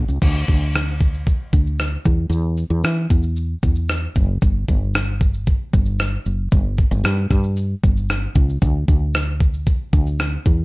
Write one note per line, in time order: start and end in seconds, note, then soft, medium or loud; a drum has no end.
0.08 0.19 C#2 medium
0.08 shaker soft
0.22 0.43 D2 medium
0.22 kick medium
0.22 crash medium
0.22 shaker medium
0.48 1.36 D2 medium
0.48 kick medium
0.48 shaker soft
0.75 cross-stick loud
0.75 shaker medium
1.01 kick medium
1.01 shaker soft
1.14 shaker soft
1.27 kick medium
1.27 shaker medium
1.53 1.96 D2 medium
1.53 kick medium
1.53 shaker soft
1.66 shaker soft
1.79 cross-stick medium
1.79 shaker medium
2.05 2.27 E2 medium
2.05 kick medium
2.05 shaker soft
2.30 2.63 E2 medium
2.30 shaker medium
2.57 shaker soft
2.70 2.81 E2 medium
2.84 3.06 E3 medium
2.84 cross-stick loud
2.84 shaker medium
3.10 3.54 E2 medium
3.10 kick medium
3.10 shaker soft
3.23 shaker soft
3.36 shaker medium
3.63 4.06 E2 medium
3.63 kick medium
3.63 shaker medium
3.75 shaker soft
3.89 cross-stick medium
3.89 shaker medium
4.15 4.37 F#1 loud
4.15 kick medium
4.15 shaker soft
4.42 4.64 G1 medium
4.42 kick loud
4.42 shaker medium
4.68 5.56 G1 medium
4.68 kick medium
4.68 shaker soft
4.95 cross-stick loud
4.95 shaker medium
5.21 kick medium
5.21 shaker soft
5.34 shaker soft
5.47 kick medium
5.47 shaker medium
5.73 6.16 G1 medium
5.73 kick medium
5.73 shaker soft
5.86 shaker soft
5.99 cross-stick loud
5.99 shaker medium
6.26 6.47 F#1 medium
6.26 shaker soft
6.52 6.84 G1 medium
6.52 kick medium
6.52 shaker medium
6.78 kick medium
6.78 shaker soft
6.91 7.02 G1 loud
6.91 shaker soft
7.04 7.26 G2 loud
7.04 cross-stick loud
7.04 shaker medium
7.30 7.74 G2 medium
7.30 kick medium
7.30 cross-stick soft
7.30 shaker soft
7.44 shaker soft
7.57 shaker medium
7.84 8.26 G1 medium
7.84 kick medium
7.84 shaker soft
7.97 shaker soft
8.10 cross-stick medium
8.10 shaker medium
8.35 8.57 C#2 medium
8.35 kick medium
8.35 shaker soft
8.50 shaker soft
8.62 8.83 D2 medium
8.62 kick medium
8.62 shaker medium
8.88 9.76 D2 medium
8.88 kick medium
8.88 shaker soft
9.14 cross-stick loud
9.14 shaker medium
9.40 kick medium
9.40 shaker soft
9.54 shaker soft
9.67 kick medium
9.67 shaker medium
9.93 10.36 D2 medium
9.93 kick medium
9.93 shaker soft
10.07 shaker soft
10.19 cross-stick medium
10.19 shaker medium
10.46 10.65 E2 medium
10.46 kick medium
10.46 shaker soft